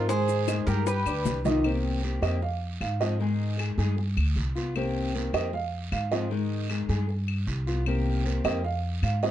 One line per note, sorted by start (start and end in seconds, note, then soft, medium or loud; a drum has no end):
0.00 0.61 G#2 medium
0.09 0.47 D#3 medium
0.09 0.41 G#3 medium
0.09 0.48 G#3 medium
0.09 0.48 D#4 medium
0.09 0.64 G#4 medium
0.09 0.41 G#4 medium
0.09 0.48 G#4 medium
0.09 0.66 C5 loud
0.09 0.41 G#5 medium
0.09 high bongo medium
0.09 long guiro medium
0.09 maracas medium
0.29 high bongo soft
0.29 maracas medium
0.48 0.67 D#3 medium
0.48 0.67 G#3 medium
0.48 0.64 D#4 medium
0.48 0.67 D#4 medium
0.48 0.66 G#4 medium
0.48 0.64 D#5 medium
0.48 0.64 D#6 medium
0.48 high bongo medium
0.48 short guiro medium
0.48 claves medium
0.48 maracas medium
0.67 1.03 G2 medium
0.67 0.99 G3 medium
0.67 0.86 G#3 medium
0.67 0.86 D#4 medium
0.67 0.85 G4 medium
0.67 1.00 G4 medium
0.67 0.86 G#4 medium
0.67 0.86 A#4 medium
0.67 1.00 G5 medium
0.67 high bongo soft
0.67 short guiro medium
0.67 maracas soft
0.87 1.41 G4 medium
0.87 1.41 B4 medium
0.87 muted steel-string acoustic guitar stroke medium
0.87 high bongo medium
0.87 long guiro medium
0.87 maracas medium
1.06 1.24 D2 medium
1.06 1.38 D4 medium
1.06 1.38 D5 medium
1.06 1.38 D6 medium
1.06 claves medium
1.06 maracas medium
1.25 2.17 C2 medium
1.25 high bongo soft
1.25 low bongo medium
1.25 short guiro medium
1.25 maracas medium
1.45 1.61 D#3 medium
1.45 1.64 B3 medium
1.45 1.61 D#4 medium
1.45 1.64 F4 medium
1.45 1.61 D#5 medium
1.45 high bongo soft
1.45 short guiro medium
1.45 maracas soft
1.64 2.03 C3 medium
1.64 2.02 D#3 medium
1.64 2.02 A#3 medium
1.64 2.03 C4 medium
1.64 2.03 G4 medium
1.64 long guiro medium
1.64 claves medium
2.03 2.22 D#3 soft
2.03 2.22 A#3 medium
2.03 2.22 C4 soft
2.03 2.21 G4 medium
2.03 short guiro medium
2.22 2.77 F2 medium
2.22 2.42 D#3 medium
2.22 2.42 A#3 medium
2.22 2.41 C4 medium
2.22 2.41 G4 medium
2.22 2.42 D#5 medium
2.22 short guiro medium
2.22 claves medium
2.42 2.79 F5 medium
2.42 muted steel-string acoustic guitar stroke medium
2.42 long guiro medium
2.81 3.72 G#2 medium
2.81 3.00 F5 medium
2.81 short guiro medium
2.81 claves medium
3.00 3.19 F3 medium
3.00 3.19 G#3 medium
3.00 3.20 C4 medium
3.00 3.19 F4 medium
3.00 3.55 D#5 medium
3.00 short guiro medium
3.20 3.57 D#3 medium
3.20 3.58 G#3 medium
3.20 3.58 D#4 medium
3.20 3.59 G#4 medium
3.20 long guiro medium
3.58 3.77 D#3 soft
3.58 3.78 G#3 medium
3.58 3.78 D#4 soft
3.58 3.77 G#4 medium
3.58 short guiro medium
3.58 claves medium
3.78 4.14 G2 medium
3.78 3.97 G#3 medium
3.78 3.97 D#4 medium
3.78 3.97 G#4 medium
3.78 short guiro medium
3.98 muted steel-string acoustic guitar stroke medium
3.98 long guiro medium
4.17 4.35 D2 medium
4.17 claves medium
4.36 5.28 C2 medium
4.36 short guiro medium
4.55 4.75 B3 medium
4.55 4.75 F4 medium
4.55 short guiro medium
4.75 5.14 C3 medium
4.75 5.13 D#3 medium
4.75 5.14 A#3 medium
4.75 5.14 C4 medium
4.75 5.15 G4 medium
4.75 long guiro medium
4.75 claves medium
5.14 5.33 D#3 medium
5.14 5.34 A#3 medium
5.14 5.33 C4 medium
5.14 5.32 G4 medium
5.14 short guiro medium
5.33 5.88 F2 medium
5.33 5.53 D#3 medium
5.33 5.53 A#3 medium
5.33 5.52 C4 medium
5.33 5.53 G4 medium
5.33 5.53 D#5 medium
5.33 short guiro medium
5.33 claves medium
5.53 5.90 F5 medium
5.53 muted steel-string acoustic guitar stroke medium
5.53 long guiro medium
5.92 6.83 G#2 medium
5.92 6.11 F5 medium
5.92 short guiro medium
5.92 claves medium
6.11 6.30 F3 medium
6.11 6.30 G#3 medium
6.11 6.31 C4 medium
6.11 6.30 F4 medium
6.11 6.66 D#5 medium
6.11 short guiro medium
6.30 6.69 D#3 medium
6.30 6.69 G#3 medium
6.30 6.70 D#4 medium
6.30 6.70 G#4 medium
6.30 long guiro medium
6.70 6.89 D#3 medium
6.70 6.89 G#3 medium
6.70 6.89 D#4 medium
6.70 6.88 G#4 medium
6.70 short guiro medium
6.70 claves medium
6.89 7.44 G2 medium
6.89 7.09 G#3 medium
6.89 7.09 D#4 medium
6.89 7.08 G#4 medium
6.89 short guiro medium
7.09 muted steel-string acoustic guitar stroke medium
7.09 long guiro medium
7.28 claves medium
7.47 8.39 C2 medium
7.47 short guiro medium
7.67 7.86 B3 medium
7.67 7.86 F4 medium
7.67 short guiro medium
7.86 8.25 C3 medium
7.86 8.24 D#3 medium
7.86 8.24 A#3 medium
7.86 8.25 C4 medium
7.86 8.25 G4 medium
7.86 long guiro medium
7.86 claves medium
8.25 8.44 D#3 soft
8.25 8.44 A#3 medium
8.25 8.44 C4 medium
8.25 8.43 G4 medium
8.25 short guiro medium
8.44 8.99 F2 medium
8.44 8.64 D#3 medium
8.44 8.64 A#3 medium
8.44 8.64 C4 medium
8.44 8.64 G4 medium
8.44 8.64 D#5 medium
8.44 short guiro medium
8.44 claves medium
8.64 9.01 F5 medium
8.64 muted steel-string acoustic guitar stroke medium
8.64 long guiro medium
9.02 9.31 G#2 medium
9.02 9.22 F5 medium
9.02 short guiro medium
9.02 claves medium
9.23 9.31 F3 medium
9.23 9.31 G#3 medium
9.23 9.31 C4 medium
9.23 9.31 F4 medium
9.23 9.31 D#5 medium
9.23 short guiro medium